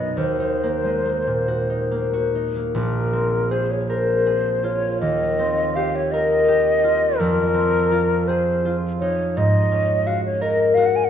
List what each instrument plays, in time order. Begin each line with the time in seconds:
Already playing: harp B1 F#2 B3 D#4 F#4, flute D#5
0.17 harp D#2, flute C5
0.40 harp D#4
0.63 harp A#3
0.84 harp G#3
1.06 harp A#3
1.27 harp A#2
1.48 harp F#4
1.70 harp D#4
1.91 harp A#3
2.13 harp F#4
2.35 harp D#4
2.56 harp A#3
2.74 harp A#1, flute A#4
3.13 harp C4
3.51 harp G#4, flute C5
3.71 flute C#5
3.89 harp A#4, flute C5
4.26 harp G#4
4.64 harp F4, flute C#5
5.01 harp D#2, flute D#5
5.39 harp C4
5.75 harp G4, flute F5
5.95 flute C#5
6.12 harp A#4, flute D#5
6.48 harp G4
6.84 harp F4
7.18 harp F2, flute A#4
7.54 harp C4
7.92 harp F4
8.28 harp G#4, flute C5
8.65 harp F4
9.00 harp D#4, flute C#5
9.37 harp G#2, flute D#5
9.71 harp C#4
10.07 harp F#4, flute F5
10.25 flute C#5
10.41 harp A#4, flute D#5
10.74 harp F#4, flute F5
10.86 flute F#5
10.96 flute G#5
11.05 flute F#5